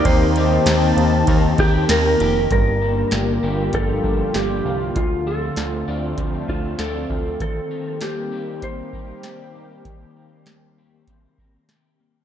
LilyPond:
<<
  \new Staff \with { instrumentName = "Electric slide guitar" } { \time 4/4 \key c \dorian \tempo 4 = 98 c''2~ c''8 g'8 bes'4 | bes'2 a'4 g'4 | f'8 a'4 r4 f'8 a'4 | a'4 g'4 c''2~ |
c''2. r4 | }
  \new Staff \with { instrumentName = "Clean electric guitar" } { \time 4/4 \key c \dorian <ees bes g' bes'>8 bes'8 g'8 bes8 bes'8 g'8 bes'8 g'8 | g,8 d'8 bes8 g'8 f8 d'8 g'8 bes8 | d8 a'8 f'8 d''8 c'8 a'8 d''8 f'8 | ees8 bes'8 bes8 g'8 c'8 bes'8 g'8 bes8 |
ees8 bes'8 bes8 g'8 c'8 bes'8 g'8 bes8 | }
  \new Staff \with { instrumentName = "Analog synth pad" } { \time 4/4 \key c \dorian << { <bes c' ees' a''>1 | <d g bes g'>1 | <d f a>1 | <ees g bes g'>1~ |
<ees g bes g'>1 | } \\ { g'1 | f'1 | c'1~ | c'1~ |
c'1 | } >> }
  \new Staff \with { instrumentName = "Analog synth bass" } { \clef bass \time 4/4 \key c \dorian ees,4 ees,8 ees,8 ees,8 ees,8 ees,8 f,,8 | g,,4 g,,8 g,,8 g,,8 g,,8 g,,8 c,8 | d,4 d,8 d,8 d,8 d,8 d,8 d,8 | r1 |
r1 | }
  \new DrumStaff \with { instrumentName = "Drums" } \drummode { \time 4/4 <bd cymr>8 cymr8 <cymr sn tamb>8 cymr8 <bd cymr>8 <bd cymr>8 <cymr sn tamb>8 cymr8 | <hh bd>4 <hh sn>4 <hh bd>8 bd8 <hh sn>4 | <hh bd>4 <hh sn>4 <hh bd>8 bd8 <hh sn>8 bd8 | <hh bd>4 <hh sn>4 <hh bd>8 bd8 <hh sn>4 |
<hh bd>4 <hh sn>4 <hh bd>8 bd8 <hh sn>4 | }
>>